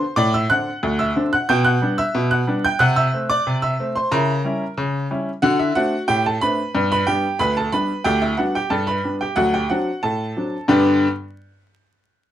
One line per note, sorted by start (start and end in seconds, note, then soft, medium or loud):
0.00 0.15 C5 medium
0.00 0.10 C6 loud
0.16 0.45 A2 loud
0.16 0.32 D5 loud
0.16 0.33 D6 loud
0.34 0.50 E5 medium
0.34 0.50 E6 loud
0.50 0.68 D3 medium
0.50 0.68 C4 medium
0.50 0.69 D4 medium
0.50 0.96 F#5 medium
0.50 0.89 F#6 loud
0.83 1.11 D2 loud
0.99 1.30 E5 medium
0.99 1.30 E6 loud
1.16 1.34 D3 medium
1.16 1.34 C4 medium
1.16 1.34 D4 medium
1.33 1.48 F#5 medium
1.33 1.49 F#6 loud
1.49 1.77 B2 loud
1.49 1.65 G5 loud
1.49 1.65 G6 loud
1.65 1.96 F#5 medium
1.65 1.91 F#6 loud
1.82 2.00 G3 medium
1.82 2.00 B3 medium
1.82 2.01 D4 medium
1.98 2.29 E5 loud
1.98 2.29 E6 loud
2.15 2.42 B2 loud
2.31 2.62 F#5 medium
2.31 2.62 F#6 loud
2.47 2.65 G3 medium
2.47 2.66 B3 medium
2.47 2.66 D4 medium
2.65 2.80 G5 loud
2.65 2.80 G6 loud
2.79 3.08 C3 loud
2.79 2.95 F#5 loud
2.79 2.96 F#6 loud
2.96 3.27 E5 medium
2.96 3.22 E6 loud
3.13 3.31 A3 medium
3.13 3.31 C4 medium
3.30 3.60 D5 loud
3.30 3.56 D6 loud
3.47 3.74 C3 medium
3.62 3.93 E5 medium
3.62 3.88 E6 loud
3.79 3.97 A3 medium
3.79 3.98 C4 medium
3.95 4.11 C5 medium
3.95 4.11 C6 loud
4.11 4.39 C#3 loud
4.11 4.31 E4 medium
4.11 4.74 A#4 medium
4.11 4.64 A#5 loud
4.44 4.62 G3 medium
4.44 4.63 C#4 medium
4.44 4.63 E4 medium
4.78 5.05 C#3 loud
5.11 5.28 G3 medium
5.11 5.29 C#4 medium
5.11 5.29 E4 medium
5.42 5.70 D3 loud
5.42 5.58 F#4 loud
5.42 5.59 F#5 loud
5.59 5.75 E4 medium
5.59 5.76 E5 loud
5.75 5.94 A3 medium
5.75 5.94 C4 medium
5.75 5.94 D4 medium
5.75 6.06 F#4 medium
5.75 6.02 F#5 loud
6.08 6.36 A2 loud
6.08 6.24 G4 medium
6.08 6.24 G5 loud
6.26 6.41 A4 medium
6.26 6.42 A5 loud
6.41 6.60 A3 medium
6.41 6.60 C4 medium
6.41 6.60 D4 medium
6.41 6.88 B4 medium
6.41 6.81 B5 loud
6.75 7.02 G2 loud
6.75 6.94 B3 medium
6.92 7.07 B4 medium
6.92 7.07 B5 loud
7.07 7.25 G3 medium
7.07 7.25 B3 medium
7.07 7.26 D4 medium
7.07 7.38 G4 medium
7.07 7.38 G5 loud
7.39 7.68 D2 medium
7.39 7.56 B4 loud
7.39 7.56 B5 loud
7.57 7.73 A4 medium
7.57 7.73 A5 loud
7.72 7.91 G3 medium
7.72 7.91 B3 medium
7.72 7.91 D4 medium
7.72 8.04 B4 medium
7.72 8.04 B5 loud
8.04 8.33 D2 loud
8.04 8.21 G4 loud
8.04 8.21 G5 loud
8.22 8.38 E4 medium
8.22 8.38 E5 loud
8.37 8.56 G3 medium
8.37 8.57 B3 medium
8.37 8.57 D4 medium
8.37 8.54 F#4 medium
8.37 8.54 F#5 medium
8.55 8.71 G4 medium
8.55 8.71 G5 loud
8.70 8.99 G2 loud
8.70 8.87 A4 medium
8.70 8.87 A5 loud
8.87 9.19 B4 medium
8.87 9.14 B5 loud
9.04 9.22 G3 medium
9.04 9.23 B3 medium
9.04 9.23 D4 medium
9.21 9.37 G4 medium
9.21 9.37 G5 medium
9.36 9.65 D2 loud
9.36 9.56 F#3 medium
9.36 9.53 F#4 medium
9.36 9.53 F#5 loud
9.54 9.70 G4 medium
9.54 9.70 G5 loud
9.70 9.89 F#3 medium
9.70 9.89 C4 medium
9.70 9.89 D4 medium
9.70 10.01 F#4 medium
9.70 10.02 F#5 loud
10.03 10.32 A2 medium
10.03 10.66 A4 medium
10.03 10.66 A5 loud
10.37 10.55 F#3 medium
10.37 10.55 C4 soft
10.37 10.56 D4 medium
10.68 11.06 G2 loud
10.68 11.06 D3 loud
10.68 11.06 B3 loud
10.68 11.06 D4 loud
10.68 11.06 G4 loud
10.68 11.06 B4 loud
10.68 11.06 G5 medium